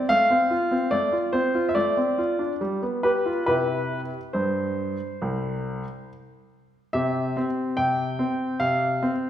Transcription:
0.09 A3 F5
0.30 C4
0.50 F4
0.71 C4
0.91 A3 D5
1.13 F4
1.33 C4 C5
1.55 F4
1.69 E5
1.75 A3 D5
1.97 C4
2.18 F4
2.39 D4
2.61 G3
2.83 B3
3.03 G4 B4
3.26 F4
3.46 C3 E4 G4 B4
4.33 G2 C5
5.22 C2
6.93 C3 C4 G4 E5
7.37 C4
7.77 C3 G5
8.19 C4
8.60 C3 F5
9.03 C4

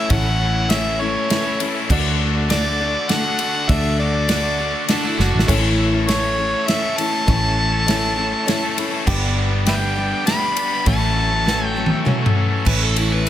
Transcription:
Already playing: A3 E4 A4 C#5 E5
0.10 A1 A2 E3 A3 C#4 E4 A4 C#5 F#5 B5, kick, ride
0.40 E3 A3 C#4 E4
0.56 A3 C#4 E4
0.69 A2 E3 A3 C#4 E4 A4 C#5 E5, snare, ride
0.99 E3 A3 C#4 E4 A4 C#5
1.15 A3 C#4 E4
1.29 A3 C#4 E4 A4 B4, snare, ride
1.44 A3 C#4 E4
1.59 E3 A3 C#4 E4 A4, ride
1.74 A3 C#4 E4
1.89 D2 D3 A3 D4 F#4 A4 D5 F#5 D6, kick, crash
2.20 D3 A3 D4 F#4
2.34 A3 D4 F#4
2.49 D3 A3 D4 F#4 A4 D5, snare, ride
2.79 D3 A3 D4 F#4 A4
2.94 A3 D4 F#4
3.08 A3 D4 F#4 A4 D5 F#5, snare, ride
3.24 A3 D4 F#4
3.39 D3 A3 D4 F#4 A4, ride
3.55 A3 D4 F#4
3.68 D2 D3 A3 F#4 A4 D5 E5, kick, ride
3.72 D4 F#4
3.99 D3 A3 D4 F#4 D5
4.14 A3 D4 F#4
4.28 D3 A3 D4 F#4 A4 D5, snare, ride
4.59 D3 A3 D4 F#4 A4
4.73 A3 D4 F#4
4.88 A3 D4 F#4 A4 D5, snare, ride
5.04 A3 D4 E4 F#4
5.17 F#1 D3 A3 D4 F#4 A4, snare
5.32 A1 A3 D4 F#4
5.39 snare
5.47 A1 A2 E3 A3 C#4 E4 A4 C#5 E5 C#6, kick, ride, crash
5.78 E3 A3 C#4 A4
5.93 A3 C#4 A4
6.06 A2 E3 A3 C#4 E4 A4 B4 C#5, snare, ride
6.38 E3 A3 C#4 E4 A4
6.53 A3 C#4 A4
6.67 A3 C#4 E4 A4 C#5 E5, snare, ride
6.83 A3 C#4 A4
6.97 E3 A3 C#4 E4 A4 A5, ride
7.11 A3 C#4 A4
7.27 A1 A2 E3 A3 C#4 E4 A4 C#5, kick, ride
7.57 E3 A3 C#4 A4
7.72 A3 C#4 A4
7.86 A2 E3 A3 C#4 E4 A4 C#5, snare, ride
8.17 E3 A3 C#4 E4 A4
8.31 A3 C#4 A4
8.46 A3 C#4 E4 A4 C#5 E5, snare, ride
8.62 A3 C#4 A4
8.76 E3 A3 C#4 E4 A4 B5, ride
8.92 A3 C#4 A4
9.06 G1 G2 D3 G3 B3 D4 G4 B4 D5 G5 D6, kick, crash
9.36 G3 B3 D4 G4
9.50 G3 B3 D4 G4
9.65 G2 D3 G3 B3 D4 G4 B4 D5 E5 G5, snare, ride
9.96 G3 B3 D4 G4
10.12 G3 B3 D4 G4
10.25 G3 B3 D4 G4 B4 E5 B5, snare, ride
10.42 G3 B3 D4 G4
10.57 G3 B3 D4 G4, ride
10.72 G3 B3 D4 G4
10.85 A1 A2 E3 F#3 A3 C#4 F#4 A4 C#5 E5 F#5 A5 C#6, kick, ride
11.16 E3 A3 C#4 A4
11.31 A3 C#4 A4
11.45 A2 E3 F#3 A3 C#4 F#4 A4 B4, snare
11.67 G5
11.75 E3 F#3 A3 C#4 F#4 A4
11.86 high tom
11.91 A3 C#4 A4
12.05 F#3 A3 C#4 F#4 A4 C#5, mid tom
12.21 A3 C#4 A4
12.26 mid tom
12.35 E3 A3 C#4 A4
12.51 A3 C#4 A4
12.66 A1 A2 E3 A3 C#4 E4 A4 B4 C#5 E5 C#6, kick, crash
12.82 A4
12.96 E4, ride
13.12 B4
13.26 A3

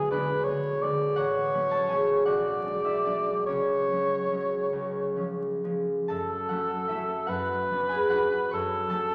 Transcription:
Already playing: B1 D3 G#3 B3 E4 G#4 E5
0.11 D3 G#3 B3 D4 B4 D5
0.44 D3 G#3 C#5
0.48 B3
0.82 D3 G#3 B3 D5
1.16 A1 F#4 C#5 F#5
1.53 F#3 A3 C#4
1.71 A4 A5
1.89 F#3 A3 C#4 G#4 G#5
2.26 B1 F#4 D5 F#5
2.65 F#3 G#3 D4
2.85 E4 E5
3.05 F#3 G#3 D4 D5
3.46 C#2 C#4 C#5
3.91 F#3 G#3 C#4
4.31 F#3 G#3 C#4
4.73 C#2
5.16 F3 G#3 C#4
5.64 F3 G#3 C#4
6.08 F#2 A4 A5
6.49 F#3 A3 C#4 F#4 F#5
6.88 F#3 A3 C#4 E4 E5
7.27 F#2 F#4 B4 F#5
7.70 F#3 B3 D4
7.89 G#4 G#5
8.10 F#3 B3 D4 F#4 F#5
8.51 F#2 A4 C#5 C#6
8.90 F#3 A3 C#4 A4 A5

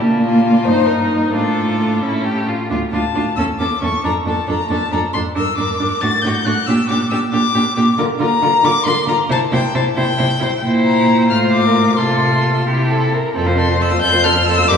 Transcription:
0.00 A#2 A#3 D4
0.20 F4
0.65 G2 D#4 C5
0.87 A#4
1.33 A2 D4 F4 A4
2.02 A2 C#4 E4
2.24 G4
2.48 F4
2.70 D2 D4 F4
2.92 D2 D4 F4 A5
3.15 D2 D4 F4
3.36 E2 C#4 A4 E6
3.59 E2 C#4 A4 D6
3.81 E2 C#4 A4 C#6
4.04 F2 D4 A4 A#5
4.26 F2 D4 A4 A5
4.47 F2 D4 A4 A#5
4.70 F2 D4 A4 A5
4.92 F2 D4 A4 A#5
5.13 F2 D4 A4 C6
5.35 G2 D4 A#4 E6
5.58 G2 D4 A#4 D6
5.80 G2 D4 A#4
6.01 A2 D4 F#4 A6
6.22 A2 D4 G6
6.26 F#4
6.45 A2 D4 F#4 F#6
6.67 A#2 D4 G4 E6
6.89 A#2 D4 G4 D6
7.10 A#2 D4 G4 E6
7.32 A#2 D4 G4 D6
7.54 A#2 D4 G4
7.76 A#2 D4 G4
7.98 D3 F4 A#4
8.19 D3 F4 A#4 A#5
8.42 D3 F4 A#4
8.63 D3 F4 A#4 D6
8.85 D3 F4 A#4 C6
9.06 D3 F4 A#4 A#5
9.29 C3 E4 C5 A5
9.52 C3 E4 C5 G5
9.74 C3 E4 C5 A5
9.97 C3 E4 C5 G5
10.18 C3 E4 C5
10.39 C3 E4 C5
10.61 A#2 E4 C5
10.86 A#5
11.29 A2 F4 C5 F6
11.53 D6
11.65 A#4
11.98 C3 F4 A4 C6
12.66 C3 E4 G4
12.90 A4
13.13 A#4
13.35 F2 C4 A4
13.46 F4 C5
13.56 C4 A4 C6
13.68 F4 C5
13.80 C4 A4 E6
13.91 F4 C5
14.02 F2 C4 A4 G6
14.12 F4 C5
14.24 C4 A4 F6
14.36 F4 C5
14.46 C4 A4 E6
14.57 F4 C5
14.68 F2 G4 A#4 D6

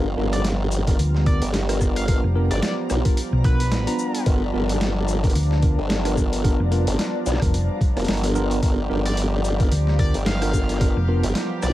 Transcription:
Already playing: G1 F3 G3 B3 F4 G4 F5 A#5
0.17 G1 B3 D4 F4 A#4
0.33 D5, closed hi-hat
0.44 snare, closed hi-hat
0.72 D5, closed hi-hat, shaker
0.87 B3 D4 F4 A#4, kick, closed hi-hat
0.99 D2, closed hi-hat
1.15 snare
1.26 B3 D4 F4 A#4 D5, kick, closed hi-hat
1.42 G1, closed hi-hat
1.54 snare, closed hi-hat
1.69 B3 D4 F4 A#4, cross-stick, closed hi-hat
1.81 kick, cross-stick, shaker
1.96 F5, closed hi-hat
2.08 B3 D4 F4 A#4 F5, kick, closed hi-hat
2.24 F1
2.35 B3 D4 F4 A#4
2.51 G1 D5, closed hi-hat
2.62 D5, snare, closed hi-hat
2.90 B1, cross-stick, closed hi-hat, shaker
3.05 B3 D4 F4 A#4, kick, closed hi-hat
3.17 closed hi-hat
3.32 B1
3.44 B3 D4 F4 A#4 B4, kick, closed hi-hat
3.60 closed hi-hat
3.72 snare, closed hi-hat
3.87 B3 D4 F4 A#5, closed hi-hat
3.99 shaker
4.14 closed hi-hat
4.26 G1 B3 D4 F4 A#4, kick, closed hi-hat
4.53 G1 B3 D4 F4 A#4
4.69 closed hi-hat
4.81 snare, closed hi-hat
5.08 closed hi-hat, shaker
5.23 B3 D4 F4 A#4, kick, closed hi-hat
5.30 closed hi-hat
5.35 D2, closed hi-hat
5.43 closed hi-hat
5.51 snare
5.62 B3 D4 F4 A#4, kick, closed hi-hat
5.78 G1
5.90 snare, closed hi-hat
6.05 B3 D4 F4 A#4, cross-stick, closed hi-hat
6.17 kick, cross-stick, shaker
6.33 closed hi-hat
6.44 B3 D4 F4 A#4, kick, closed hi-hat
6.60 F1
6.72 B3 D4 F4 A#4, closed hi-hat
6.87 G1, closed hi-hat
6.99 snare, closed hi-hat
7.26 B1, cross-stick, closed hi-hat, shaker
7.29 cross-stick
7.32 cross-stick
7.34 cross-stick
7.40 F1 B3 D4 F4 A#4, kick, cross-stick, closed hi-hat
7.54 closed hi-hat
7.81 kick, closed hi-hat
7.96 F1 B3 D4 F4 A#4, cross-stick, closed hi-hat
7.99 closed hi-hat
8.05 snare, closed hi-hat
8.08 G1, closed hi-hat
8.13 closed hi-hat
8.17 closed hi-hat
8.24 B3 D4 F4 A#4, closed hi-hat
8.35 B3 D4 F4 A#4, shaker
8.51 closed hi-hat
8.62 G1 B3 D4 F4 G4 A#4, kick, closed hi-hat
8.89 G1 B3 D4 F4 A#4
9.05 D5, closed hi-hat
9.17 closed hi-hat
9.45 F5, closed hi-hat, shaker
9.60 B3 D4 F4 A#4, kick, closed hi-hat
9.72 D2, closed hi-hat
9.87 snare
9.99 B3 D4 F4 A#4 D5, kick, closed hi-hat
10.14 G1, closed hi-hat
10.26 F5, snare, closed hi-hat
10.42 B3 D4 F4 A#4, cross-stick, closed hi-hat
10.54 kick, cross-stick, shaker
10.59 cross-stick
10.63 cross-stick
10.69 cross-stick, closed hi-hat
10.72 cross-stick
10.77 F4, kick, cross-stick, closed hi-hat
10.81 B3 D4 A#4
10.96 F1
11.08 B3 D4 F4 A#4
11.23 G1, closed hi-hat
11.35 snare, closed hi-hat
11.63 B1 D5, cross-stick, closed hi-hat, shaker

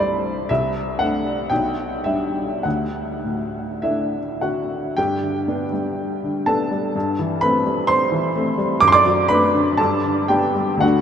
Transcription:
Already playing: C2 G2 A3 E4 C5 A5 B5
0.00 G3 D5
0.49 C2 E5
0.99 A3 D4 F#5
1.50 B1 G5
2.04 G3 D4 E5
2.63 D2 F#5
3.24 A2
3.82 A3 D4 E4 E5
4.41 D3 F#4 F#5
4.97 G2 G4 G5
5.22 D3
5.48 B3 D4
5.72 G3
6.23 D3
6.46 B3 D4 A4 A5
6.71 G3
6.95 G2
7.19 E3
7.41 A3 C4 B4 B5
7.66 G3
7.87 C5 C6
8.12 E3
8.35 A3 C4
8.58 G3
8.80 F#2 D6
8.88 C6
8.92 D5 D6
9.05 F#3
9.29 A3 D4 B4 B5
9.53 D3
9.77 G2 A4 A5
10.04 D3
10.28 B3 D4 G4 G5
10.55 G3
10.77 D2 D3 A3 D4 F#5
10.82 F#4

